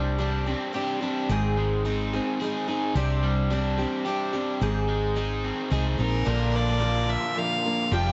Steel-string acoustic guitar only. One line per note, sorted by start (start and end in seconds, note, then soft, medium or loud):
0.00 0.19 C3 medium
0.00 0.17 G3 medium
0.00 0.20 C4 medium
0.00 0.19 D4 medium
0.00 0.20 G4 medium
0.18 0.46 G3 medium
0.18 0.47 C4 medium
0.18 0.46 D4 medium
0.18 0.45 G4 medium
0.46 0.73 C4 soft
0.46 0.74 D4 soft
0.46 0.74 G4 soft
0.73 1.01 G3 medium
0.73 1.02 C4 medium
0.73 1.01 D4 medium
0.73 0.99 G4 medium
1.00 1.29 C4 soft
1.00 1.30 D4 soft
1.00 1.29 G4 soft
1.29 1.85 G#2 medium
1.29 1.85 D#3 medium
1.29 1.84 G#3 medium
1.29 1.85 C4 medium
1.29 1.85 D#4 medium
1.29 1.86 G#4 medium
1.85 2.13 G#3 medium
1.85 2.13 C4 medium
1.85 2.13 D#4 medium
1.85 2.12 G#4 medium
2.14 2.40 G#3 soft
2.14 2.41 C4 soft
2.14 2.41 D#4 soft
2.14 2.41 G#4 soft
2.41 2.68 G#3 medium
2.41 2.69 C4 medium
2.41 2.68 D#4 medium
2.41 2.67 G#4 medium
2.68 2.95 G#3 soft
2.68 2.95 C4 soft
2.68 2.96 D#4 soft
2.68 2.95 G#4 soft
2.95 3.51 C3 medium
2.95 3.49 G3 medium
2.95 3.52 C4 medium
2.95 3.51 D4 medium
2.95 3.52 G4 medium
3.51 3.78 G3 medium
3.51 3.79 C4 medium
3.51 3.78 D4 medium
3.51 3.77 G4 medium
3.78 4.06 C4 soft
3.78 4.06 D4 soft
3.78 4.06 G4 soft
4.06 4.33 G3 medium
4.06 4.34 C4 medium
4.06 4.33 D4 medium
4.06 4.32 G4 medium
4.33 4.61 C4 soft
4.33 4.61 D4 soft
4.33 4.61 G4 medium
4.61 5.16 G#2 medium
4.61 5.17 D#3 medium
4.61 5.15 G#3 medium
4.61 5.15 C4 medium
4.61 5.16 D#4 medium
4.61 5.17 G#4 medium
5.16 5.69 G#3 medium
5.16 5.70 C4 medium
5.16 5.71 D#4 medium
5.16 5.72 G#4 medium
5.70 5.99 G#3 medium
5.70 5.98 C4 medium
5.70 5.97 D#4 medium
5.70 5.96 G#4 medium
5.98 6.25 G#3 soft
5.98 6.26 C4 soft
5.98 6.26 D#4 soft
5.98 6.26 G#4 soft
6.25 6.81 A#2 medium
6.25 6.81 D3 medium
6.25 6.79 F3 medium
6.25 6.79 A#3 medium
6.25 6.80 D4 medium
6.25 6.81 A#4 medium
6.79 7.35 F3 medium
6.79 7.36 A#3 medium
6.79 7.37 D4 medium
6.79 7.37 A#4 medium
7.36 7.64 F3 medium
7.36 7.65 A#3 medium
7.36 7.65 D4 medium
7.36 7.64 A#4 medium
7.65 7.91 F3 soft
7.65 7.93 A#3 soft
7.65 7.93 D4 soft
7.65 7.93 A#4 soft
7.92 8.12 F3 medium
7.92 8.12 G3 medium
7.92 8.12 C4 medium
7.92 8.12 F4 medium
7.92 8.12 A4 medium